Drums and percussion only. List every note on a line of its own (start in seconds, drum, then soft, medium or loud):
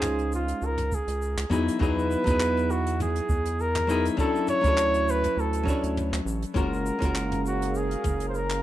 0.02 clap medium
0.02 mid tom medium
0.02 shaker medium
0.19 closed hi-hat soft
0.19 shaker soft
0.32 shaker medium
0.48 closed hi-hat medium
0.48 shaker soft
0.62 shaker medium
0.78 closed hi-hat medium
0.78 mid tom medium
0.78 shaker soft
0.92 kick loud
0.92 shaker medium
1.08 closed hi-hat medium
1.08 shaker soft
1.22 shaker medium
1.38 clap medium
1.38 closed hi-hat medium
1.38 shaker soft
1.51 mid tom medium
1.51 shaker medium
1.68 closed hi-hat medium
1.68 shaker medium
1.81 kick loud
1.81 shaker medium
1.99 shaker soft
2.11 shaker medium
2.27 kick loud
2.27 closed hi-hat medium
2.27 mid tom medium
2.27 shaker soft
2.40 clap medium
2.40 shaker medium
2.57 closed hi-hat soft
2.57 shaker soft
2.70 shaker medium
2.87 closed hi-hat medium
2.87 shaker medium
3.00 mid tom medium
3.00 shaker medium
3.16 closed hi-hat medium
3.16 shaker soft
3.29 kick loud
3.29 shaker medium
3.45 closed hi-hat medium
3.45 shaker soft
3.60 shaker medium
3.75 clap medium
3.75 closed hi-hat medium
3.75 mid tom medium
3.75 shaker soft
3.89 shaker loud
4.05 closed hi-hat medium
4.05 shaker medium
4.18 kick loud
4.18 shaker medium
4.35 shaker soft
4.48 mid tom medium
4.48 shaker medium
4.64 kick loud
4.64 closed hi-hat medium
4.64 shaker soft
4.77 clap medium
4.77 shaker medium
4.94 closed hi-hat medium
4.94 shaker soft
5.09 shaker medium
5.24 closed hi-hat medium
5.24 mid tom medium
5.24 shaker medium
5.39 shaker medium
5.53 closed hi-hat medium
5.53 shaker soft
5.67 kick loud
5.67 shaker medium
5.83 closed hi-hat medium
5.83 shaker soft
5.97 mid tom medium
5.97 shaker medium
6.14 clap medium
6.14 closed hi-hat medium
6.14 shaker soft
6.27 shaker loud
6.42 closed hi-hat medium
6.42 shaker medium
6.56 kick loud
6.56 mid tom medium
6.56 shaker medium
6.74 shaker soft
6.86 shaker medium
7.02 kick loud
7.02 closed hi-hat medium
7.02 shaker soft
7.15 clap medium
7.15 shaker medium
7.32 closed hi-hat soft
7.32 mid tom medium
7.32 shaker soft
7.46 shaker medium
7.62 closed hi-hat medium
7.62 shaker soft
7.75 shaker medium
7.91 closed hi-hat medium
7.91 shaker soft
8.04 kick loud
8.04 mid tom medium
8.04 shaker medium
8.20 closed hi-hat medium
8.20 shaker soft
8.34 shaker medium
8.50 clap medium
8.50 closed hi-hat medium
8.50 shaker soft